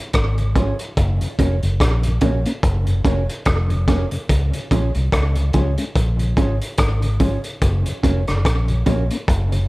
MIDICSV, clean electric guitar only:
0, 0, Header, 1, 3, 480
1, 0, Start_track
1, 0, Tempo, 831025
1, 561, Time_signature, 4, 2, 24, 8
1, 5592, End_track
2, 0, Start_track
2, 0, Title_t, "Clean electric guitar"
2, 0, Program_c, 0, 27
2, 320, Note_on_c, 0, 61, 91
2, 326, Note_on_c, 0, 65, 80
2, 328, Note_on_c, 0, 68, 89
2, 331, Note_on_c, 0, 73, 90
2, 416, Note_off_c, 0, 61, 0
2, 419, Note_off_c, 0, 65, 0
2, 420, Note_off_c, 0, 68, 0
2, 422, Note_off_c, 0, 73, 0
2, 801, Note_on_c, 0, 61, 79
2, 806, Note_on_c, 0, 66, 85
2, 808, Note_on_c, 0, 70, 101
2, 813, Note_on_c, 0, 73, 98
2, 896, Note_off_c, 0, 61, 0
2, 899, Note_off_c, 0, 66, 0
2, 900, Note_off_c, 0, 70, 0
2, 902, Note_off_c, 0, 73, 0
2, 1279, Note_on_c, 0, 61, 96
2, 1283, Note_on_c, 0, 66, 94
2, 1285, Note_on_c, 0, 70, 93
2, 1290, Note_on_c, 0, 73, 104
2, 1375, Note_off_c, 0, 61, 0
2, 1377, Note_off_c, 0, 66, 0
2, 1378, Note_off_c, 0, 70, 0
2, 1381, Note_off_c, 0, 73, 0
2, 1761, Note_on_c, 0, 61, 84
2, 1768, Note_on_c, 0, 66, 89
2, 1770, Note_on_c, 0, 70, 85
2, 1775, Note_on_c, 0, 73, 97
2, 1856, Note_off_c, 0, 61, 0
2, 1860, Note_off_c, 0, 66, 0
2, 1861, Note_off_c, 0, 70, 0
2, 1863, Note_off_c, 0, 73, 0
2, 2241, Note_on_c, 0, 61, 84
2, 2244, Note_on_c, 0, 66, 87
2, 2247, Note_on_c, 0, 70, 99
2, 2249, Note_on_c, 0, 73, 89
2, 2336, Note_off_c, 0, 61, 0
2, 2338, Note_off_c, 0, 66, 0
2, 2339, Note_off_c, 0, 70, 0
2, 2340, Note_off_c, 0, 73, 0
2, 2725, Note_on_c, 0, 61, 81
2, 2728, Note_on_c, 0, 65, 91
2, 2732, Note_on_c, 0, 68, 99
2, 2736, Note_on_c, 0, 73, 92
2, 2818, Note_off_c, 0, 61, 0
2, 2819, Note_off_c, 0, 65, 0
2, 2821, Note_off_c, 0, 68, 0
2, 2823, Note_off_c, 0, 73, 0
2, 3201, Note_on_c, 0, 61, 80
2, 3205, Note_on_c, 0, 65, 84
2, 3209, Note_on_c, 0, 68, 81
2, 3212, Note_on_c, 0, 73, 87
2, 3296, Note_off_c, 0, 61, 0
2, 3298, Note_off_c, 0, 65, 0
2, 3300, Note_off_c, 0, 68, 0
2, 3302, Note_off_c, 0, 73, 0
2, 3682, Note_on_c, 0, 61, 82
2, 3685, Note_on_c, 0, 65, 85
2, 3688, Note_on_c, 0, 68, 89
2, 3692, Note_on_c, 0, 73, 93
2, 3776, Note_off_c, 0, 61, 0
2, 3778, Note_off_c, 0, 65, 0
2, 3780, Note_off_c, 0, 68, 0
2, 3782, Note_off_c, 0, 73, 0
2, 4159, Note_on_c, 0, 61, 94
2, 4163, Note_on_c, 0, 65, 93
2, 4167, Note_on_c, 0, 68, 94
2, 4170, Note_on_c, 0, 73, 104
2, 4255, Note_off_c, 0, 61, 0
2, 4257, Note_off_c, 0, 65, 0
2, 4259, Note_off_c, 0, 68, 0
2, 4260, Note_off_c, 0, 73, 0
2, 4639, Note_on_c, 0, 61, 77
2, 4644, Note_on_c, 0, 66, 87
2, 4648, Note_on_c, 0, 70, 91
2, 4650, Note_on_c, 0, 73, 85
2, 4735, Note_off_c, 0, 61, 0
2, 4737, Note_off_c, 0, 66, 0
2, 4739, Note_off_c, 0, 70, 0
2, 4740, Note_off_c, 0, 73, 0
2, 5118, Note_on_c, 0, 61, 84
2, 5123, Note_on_c, 0, 66, 95
2, 5126, Note_on_c, 0, 70, 97
2, 5130, Note_on_c, 0, 73, 93
2, 5215, Note_off_c, 0, 61, 0
2, 5217, Note_off_c, 0, 66, 0
2, 5219, Note_off_c, 0, 70, 0
2, 5221, Note_off_c, 0, 73, 0
2, 5592, End_track
3, 0, Start_track
3, 0, Title_t, "Muted clean electric guitar strokes"
3, 460, Note_on_c, 9, 29, 54
3, 518, Note_off_c, 9, 29, 0
3, 2380, Note_on_c, 9, 29, 50
3, 2438, Note_off_c, 9, 29, 0
3, 4298, Note_on_c, 9, 29, 50
3, 4356, Note_off_c, 9, 29, 0
3, 5499, Note_on_c, 9, 29, 42
3, 5557, Note_off_c, 9, 29, 0
3, 5592, End_track
0, 0, End_of_file